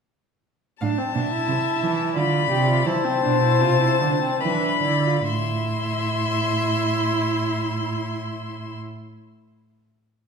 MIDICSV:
0, 0, Header, 1, 5, 480
1, 0, Start_track
1, 0, Key_signature, 0, "minor"
1, 0, Tempo, 663717
1, 592, Time_signature, 3, 2, 24, 8
1, 1560, Tempo, 725514
1, 2520, Tempo, 801068
1, 3000, Tempo, 870827
1, 3480, Tempo, 902256
1, 6138, End_track
2, 0, Start_track
2, 0, Title_t, "Violin"
2, 0, Program_c, 0, 40
2, 586, Note_on_c, 0, 81, 73
2, 1528, Note_off_c, 0, 81, 0
2, 1568, Note_on_c, 0, 83, 74
2, 2030, Note_on_c, 0, 81, 87
2, 2040, Note_off_c, 0, 83, 0
2, 2999, Note_on_c, 0, 83, 71
2, 3008, Note_off_c, 0, 81, 0
2, 3475, Note_off_c, 0, 83, 0
2, 3479, Note_on_c, 0, 84, 66
2, 5328, Note_off_c, 0, 84, 0
2, 6138, End_track
3, 0, Start_track
3, 0, Title_t, "Violin"
3, 0, Program_c, 1, 40
3, 584, Note_on_c, 1, 77, 63
3, 641, Note_off_c, 1, 77, 0
3, 824, Note_on_c, 1, 76, 71
3, 1543, Note_off_c, 1, 76, 0
3, 1561, Note_on_c, 1, 74, 74
3, 2022, Note_on_c, 1, 72, 85
3, 2032, Note_off_c, 1, 74, 0
3, 2996, Note_off_c, 1, 72, 0
3, 2999, Note_on_c, 1, 71, 72
3, 3228, Note_off_c, 1, 71, 0
3, 3231, Note_on_c, 1, 74, 68
3, 3473, Note_off_c, 1, 74, 0
3, 3476, Note_on_c, 1, 76, 73
3, 5326, Note_off_c, 1, 76, 0
3, 6138, End_track
4, 0, Start_track
4, 0, Title_t, "Viola"
4, 0, Program_c, 2, 41
4, 591, Note_on_c, 2, 62, 66
4, 709, Note_on_c, 2, 60, 66
4, 719, Note_off_c, 2, 62, 0
4, 826, Note_off_c, 2, 60, 0
4, 831, Note_on_c, 2, 62, 60
4, 948, Note_off_c, 2, 62, 0
4, 954, Note_on_c, 2, 64, 63
4, 1562, Note_on_c, 2, 65, 67
4, 1572, Note_off_c, 2, 64, 0
4, 1789, Note_off_c, 2, 65, 0
4, 1793, Note_on_c, 2, 67, 65
4, 1907, Note_off_c, 2, 67, 0
4, 1914, Note_on_c, 2, 65, 64
4, 2022, Note_off_c, 2, 65, 0
4, 2026, Note_on_c, 2, 64, 75
4, 2145, Note_on_c, 2, 60, 75
4, 2155, Note_off_c, 2, 64, 0
4, 2268, Note_off_c, 2, 60, 0
4, 2273, Note_on_c, 2, 62, 68
4, 2393, Note_off_c, 2, 62, 0
4, 2397, Note_on_c, 2, 64, 66
4, 2522, Note_on_c, 2, 65, 72
4, 2531, Note_off_c, 2, 64, 0
4, 2634, Note_off_c, 2, 65, 0
4, 2638, Note_on_c, 2, 64, 67
4, 2754, Note_off_c, 2, 64, 0
4, 2763, Note_on_c, 2, 62, 63
4, 2878, Note_off_c, 2, 62, 0
4, 2883, Note_on_c, 2, 60, 60
4, 3001, Note_off_c, 2, 60, 0
4, 3009, Note_on_c, 2, 62, 64
4, 3239, Note_on_c, 2, 64, 62
4, 3247, Note_off_c, 2, 62, 0
4, 3357, Note_off_c, 2, 64, 0
4, 3360, Note_on_c, 2, 65, 61
4, 3404, Note_off_c, 2, 65, 0
4, 3484, Note_on_c, 2, 64, 68
4, 5334, Note_off_c, 2, 64, 0
4, 6138, End_track
5, 0, Start_track
5, 0, Title_t, "Cello"
5, 0, Program_c, 3, 42
5, 588, Note_on_c, 3, 45, 63
5, 646, Note_off_c, 3, 45, 0
5, 830, Note_on_c, 3, 47, 60
5, 888, Note_off_c, 3, 47, 0
5, 1070, Note_on_c, 3, 48, 61
5, 1127, Note_off_c, 3, 48, 0
5, 1309, Note_on_c, 3, 52, 68
5, 1560, Note_on_c, 3, 50, 66
5, 1570, Note_off_c, 3, 52, 0
5, 1786, Note_off_c, 3, 50, 0
5, 1790, Note_on_c, 3, 48, 72
5, 2018, Note_off_c, 3, 48, 0
5, 2022, Note_on_c, 3, 52, 68
5, 2075, Note_off_c, 3, 52, 0
5, 2268, Note_on_c, 3, 47, 70
5, 2517, Note_on_c, 3, 48, 66
5, 2526, Note_off_c, 3, 47, 0
5, 2754, Note_off_c, 3, 48, 0
5, 2756, Note_on_c, 3, 50, 67
5, 2804, Note_off_c, 3, 50, 0
5, 3002, Note_on_c, 3, 52, 67
5, 3231, Note_off_c, 3, 52, 0
5, 3236, Note_on_c, 3, 50, 68
5, 3476, Note_off_c, 3, 50, 0
5, 3482, Note_on_c, 3, 45, 64
5, 5332, Note_off_c, 3, 45, 0
5, 6138, End_track
0, 0, End_of_file